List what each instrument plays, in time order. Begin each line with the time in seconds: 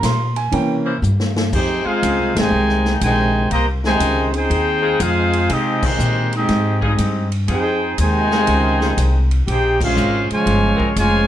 Already playing: saxophone section G3 C#4 F4 A#4
0.03 upright bass A#2, grand piano C6, kick, snare, hi-hat pedal, ride
0.36 grand piano G#5, ride
0.52 upright bass C3, grand piano E3 A#3 C#4 G5, kick, ride
0.86 saxophone section A#3 C#4 E4 C5
1.02 upright bass G2, hi-hat pedal
1.20 snare
1.36 snare
1.53 upright bass F2, trombone section C4 D#4 G4, trumpet section D#4 G#4 C5 G5, kick, crash
1.84 saxophone section G#3 D#4 F4 G#4, trombone section G#3 C4 F4, trumpet section D#4 G#4 C5 F5, muted upright bass stroke
2.03 upright bass C#2, kick, hi-hat pedal, ride
2.19 upright bass C2
2.35 upright bass G#1, trombone section C3 D#3 G#3, trumpet section D#4 C5 G5 G#5, snare, ride
2.51 upright bass C2
2.69 snare
2.85 snare
3.01 upright bass A#1, trombone section C3 D#3 G#3, trumpet section D#4 C5 G5 G#5, kick, hi-hat pedal, ride
3.51 upright bass C2, trombone section A#3, trumpet section G4 C5 D#5 A#5, kick, ride
3.84 trombone section C3 D#3 G#3, trumpet section D#4 C5 G5 G#5, snare
4.00 upright bass C#2, kick, hi-hat pedal, ride
4.34 trombone section C4 D#4 G#4, trumpet section D#4 G#4 C5 G5, ride
4.50 upright bass D#2, kick, ride
4.82 saxophone section G#3 D#4 F4 G#4
5.00 upright bass F2, trombone section G#3 C4 F4, trumpet section D#4 G#4 C5 F5, kick, hi-hat pedal, ride
5.33 ride
5.48 upright bass C3, saxophone section G#3 D#4 F4 G4, trombone section G#3 C4 D#4, kick, ride
5.53 trumpet section C4 G4 G#4 D#5
5.83 trombone section D#3 G#3 C4, trumpet section G#3 D#4 G4 C5, kick, crash
5.99 upright bass A#2, hi-hat pedal
6.33 trombone section G#3 C4 D#4, trumpet section C4 G4 G#4 D#5, ride
6.48 upright bass G#2, kick, snare, ride
6.82 saxophone section G3 D#4 F4 G#4, trombone section G#3 C4 D#4, kick
6.87 trumpet section C4 G4 G#4 D#5
6.98 upright bass G2, kick, hi-hat pedal, ride
7.32 ride
7.47 upright bass F2, saxophone section G3 D#4 F4 G#4, trombone section C4 D#4 G#4, trumpet section D#4 G#4 C5 G5, kick, ride
7.98 upright bass D#2, trombone section C3 D#3 G#3, trumpet section D#4 C5 G5 G#5, kick, hi-hat pedal, ride
8.31 saxophone section G#3 D#4 F4 G#4, snare
8.47 upright bass C#2, kick, ride
8.81 saxophone section G3 D#4 F4 G#4, snare
8.97 upright bass C2, kick, hi-hat pedal, ride
9.31 ride
9.47 upright bass A#1, trumpet section D#4 G#4 C5 G5, trombone section G4, kick, ride
9.81 trombone section G#3 C#4 F4, trumpet section C#4 G#4 C5 F5, kick, crash
9.96 upright bass G#1, saxophone section G#3 C4 C#4 A#4, hi-hat pedal
10.30 trombone section C#3 F3 G#3, trumpet section F4 C5 C#5 G#5, muted upright bass stroke, ride
10.46 upright bass G1, kick, ride
10.75 saxophone section G#3 C4 C#4 A#4
10.80 muted upright bass stroke, kick
10.96 upright bass F1, trombone section C#3 F3 G#3, trumpet section F4 C5 C#5 G#5, kick, hi-hat pedal, ride